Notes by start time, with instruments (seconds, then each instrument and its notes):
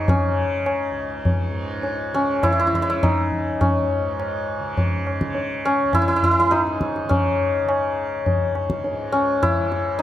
Already playing: tanpura C#2 G#2 C#3, santur D#4
0.08 santur C#4, tabla tin, tabla ge
0.28 tanpura C#3
0.66 tabla na
0.90 tanpura C#2
1.25 tabla tin, tabla ge
1.51 tanpura G#2
1.83 tabla tin
2.12 tanpura C#3, santur C#4, tabla na
2.43 santur E4, tabla na, tabla ge
2.52 santur E4
2.60 santur E4
2.67 santur E4
2.73 tanpura C#3, santur E4, tabla ge
2.82 santur E4
2.90 santur E4
3.03 santur D#4, tabla na, tabla ge
3.32 tabla ge
3.36 tanpura C#2
3.61 santur C#4, tabla tin, tabla ge
3.99 tanpura G#2
4.20 tabla na
4.59 tanpura C#3
4.77 tabla tin, tabla ge
5.07 tabla na
5.21 tanpura C#3, tabla ke
5.35 tabla tin
5.65 santur C#4
5.83 tanpura C#2
5.93 santur E4, tabla na, tabla ge
6.02 santur E4
6.08 santur E4
6.16 santur E4
6.23 santur E4, tabla ge
6.31 santur E4
6.40 santur E4
6.45 tanpura G#2
6.51 santur D#4, tabla te
6.67 tabla te
6.81 tabla ke
6.96 tabla te
7.05 tanpura C#3
7.09 santur C#4, tabla tin, tabla ge
7.65 tanpura C#3, tabla na
8.26 tanpura C#2, tabla tin, tabla ge
8.55 tabla na
8.70 tabla ke
8.84 tabla tin
8.91 tanpura G#2
9.12 santur C#4
9.43 santur E4, tabla na, tabla ge
9.51 tanpura C#3
9.72 tabla te
9.99 santur D#4